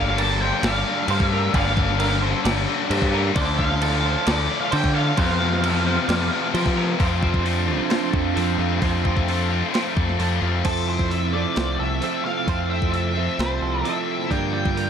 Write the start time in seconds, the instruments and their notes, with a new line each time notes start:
Already playing: picked electric bass G1, overdriven electric guitar G2 D3 A#3 D4, clean electric guitar G2 D3 F3 A#3 F4 A4 D5, distorted electric guitar G3 A#3 D4, lead electric guitar F5
0.00 overdriven electric guitar G3
0.08 snare
0.18 overdriven electric guitar G2 D3 G3 A#3 D4, clean electric guitar F3 A#3 F4 A4 A#4, lead electric guitar A5, crash
0.41 clean electric guitar F3 A#3 F4 A4 C5, overdriven electric guitar G3 A#3 D4, lead electric guitar G5
0.62 picked electric bass G1, overdriven electric guitar D3 G3 A#3 D4, clean electric guitar D5, lead electric guitar F5, snare, crash
0.85 overdriven electric guitar G2 D3 G3 A#3 D4
1.08 picked electric bass G2, clean electric guitar G2 D3 F3 A#3 F4 A4 C5, overdriven electric guitar D3 G3 A#3, crash
1.12 overdriven electric guitar D4
1.20 kick
1.28 overdriven electric guitar D4, clean electric guitar F4 A4, lead electric guitar E5
1.32 clean electric guitar F3 A#3 A#4, overdriven electric guitar G3 A#3
1.53 picked electric bass G1, overdriven electric guitar G2 D3 G3 A#3 D4, clean electric guitar G2 D3 F3 A#3 F4 A4 D5, lead electric guitar F5, kick, crash
1.75 clean electric guitar F3 A#3 F4 A4, overdriven electric guitar G3 A#3 D4, kick
1.89 snare
1.99 overdriven electric guitar G2 D3 G3 A#3 D4, clean electric guitar F3 A#3 F4 A4 A#4, crash
2.21 clean electric guitar F3 A#3 F4 A4 C5, overdriven electric guitar G3 A#3 D4
2.45 picked electric bass G1, overdriven electric guitar D3 G3 A#3 D4, clean electric guitar D5, snare, crash
2.66 overdriven electric guitar G2 D3 G3 A#3 D4
2.88 clean electric guitar G2 D3 F3 A#3 A4 C5, picked electric bass G2, overdriven electric guitar D3 G3 A#3 D4, crash
2.92 clean electric guitar F4
3.02 kick
3.12 clean electric guitar F3 A#3 A#4, overdriven electric guitar G3 A#3 D4
3.33 picked electric bass D2, overdriven electric guitar D3 F3 A3 D4, clean electric guitar D3 F3 C4 D4 A4 C5, lead electric guitar D5, kick, crash
3.57 overdriven electric guitar F3 A3 D4, clean electric guitar C4 D4 A4, lead electric guitar F5, kick
3.71 snare
3.79 overdriven electric guitar D3 F3 A3 D4, clean electric guitar F3 C4 D4 A4, crash
4.04 overdriven electric guitar F3 A3 D4, clean electric guitar C4 D4 A4 C5
4.26 picked electric bass D2, overdriven electric guitar D3 F3 A3 D4, clean electric guitar D5, lead electric guitar D5, snare, crash
4.49 overdriven electric guitar D3 F3 A3 D4
4.61 lead electric guitar F5
4.70 overdriven electric guitar D3 F3 A3 D4, clean electric guitar D3 F3 C4 D4 A4 C5, picked electric bass D3, lead electric guitar G5, crash
4.84 kick
4.94 overdriven electric guitar F3 A3 D4, clean electric guitar D4 A4, lead electric guitar F5
5.17 overdriven electric guitar F2 C3 F3 A3 C4, picked electric bass F2, clean electric guitar F3 D4 A4 C5, kick, crash
5.40 overdriven electric guitar F3 A3 C4, clean electric guitar D4 A4
5.53 snare
5.61 overdriven electric guitar F2 C3 F3 A3 C4, clean electric guitar F3 A4, crash
5.66 clean electric guitar D4
5.86 overdriven electric guitar F3 A3 C4, clean electric guitar C4 D4 A4 C5
6.08 picked electric bass F2, overdriven electric guitar C3 F3 A3, clean electric guitar D5, snare, crash
6.13 overdriven electric guitar C4
6.31 overdriven electric guitar F2 C3 F3 A3 C4
6.53 overdriven electric guitar C3 F3 A3 C4, picked electric bass F3, clean electric guitar C4 D4 C5, crash
6.66 kick
6.76 overdriven electric guitar F3 A3 C4, clean electric guitar D4 A#4
6.99 overdriven electric guitar F2 C3 F3 A3 C4 F4, picked electric bass F2, clean electric guitar F3 C4 D4 C5, kick, open hi-hat
7.04 clean electric guitar A4
7.21 overdriven electric guitar F3 A3 C4 F4, clean electric guitar C5, kick
7.34 kick
7.43 distorted electric guitar F2 C3, overdriven electric guitar F3 A3 C4 F4, clean electric guitar A4, open hi-hat
7.65 distorted electric guitar F2 C3, overdriven electric guitar F3 A3 C4 F4
7.88 distorted electric guitar F2 C3 F3 A3 C4 F4, clean electric guitar C5, snare, open hi-hat
8.13 picked electric bass F2, clean electric guitar A4, kick
8.34 distorted electric guitar F2 C3, picked electric bass F2, overdriven electric guitar F3 A3 C4 F4, clean electric guitar A4, open hi-hat
8.58 distorted electric guitar F2 C3, picked electric bass F2, overdriven electric guitar F3 A3 C4 F4
8.82 overdriven electric guitar F2 C3 F3 A3 C4 F4, picked electric bass F2, clean electric guitar C5, kick, open hi-hat
9.05 overdriven electric guitar F3 A3 C4 F4, clean electric guitar C5, kick
9.17 kick
9.28 distorted electric guitar F2 C3, overdriven electric guitar F3 A3 C4 F4, clean electric guitar A4, open hi-hat
9.50 distorted electric guitar F2 C3, overdriven electric guitar F3 A3 C4 F4
9.72 distorted electric guitar F2 C3 F3 A3 C4 F4, clean electric guitar C5, snare, open hi-hat
9.97 picked electric bass F2, clean electric guitar A4, kick
10.09 snare
10.18 distorted electric guitar F2 C3, picked electric bass F2, overdriven electric guitar F3 A3 C4 F4, clean electric guitar A4, open hi-hat
10.41 distorted electric guitar F2 C3, picked electric bass F2, overdriven electric guitar F3 A3 C4 F4
10.64 overdriven electric guitar F2 C3 F3 A3 C4, picked electric bass F2, clean electric guitar F3 C4 E4 A4 C5, lead electric guitar A4, kick, open hi-hat, crash
10.89 clean electric guitar C5, lead electric guitar C5
10.99 kick
11.11 clean electric guitar A4, lead electric guitar E5, open hi-hat
11.31 overdriven electric guitar F2 C3 F3 A3 C4, clean electric guitar E4 A4, lead electric guitar D5
11.36 clean electric guitar F3 C4
11.56 picked electric bass C2, clean electric guitar C5, snare, open hi-hat
11.80 picked electric bass C2, clean electric guitar A4, lead electric guitar E5
12.01 overdriven electric guitar F2 C3 F3 A3 C4, clean electric guitar F3 C4 E4 A4, open hi-hat
12.25 lead electric guitar F5, snare
12.45 overdriven electric guitar F2 C3 F3 A3, picked electric bass F2, clean electric guitar F3 C4 C5, kick, open hi-hat
12.49 overdriven electric guitar C4, clean electric guitar E4 A4
12.70 clean electric guitar C5, lead electric guitar E5
12.82 kick
12.92 clean electric guitar A4, lead electric guitar E5, open hi-hat
13.13 overdriven electric guitar F2 C3 F3 A3 C4, clean electric guitar E4 A4
13.18 clean electric guitar F3 C4
13.39 picked electric bass C2, clean electric guitar C5, lead electric guitar C5, snare, open hi-hat
13.62 picked electric bass C2, clean electric guitar A4
13.84 overdriven electric guitar F2 C3 F3 A3, clean electric guitar F3 C4 E4 A4, lead electric guitar E5, open hi-hat
13.88 overdriven electric guitar C4
14.30 overdriven electric guitar G2 D3 G3 A#3 D4, picked electric bass G2, clean electric guitar G2 D3 F3 A#3 F4 D5, lead electric guitar G5, kick, open hi-hat
14.34 clean electric guitar A#4
14.53 clean electric guitar D5, lead electric guitar G5
14.66 kick
14.77 clean electric guitar A#4, open hi-hat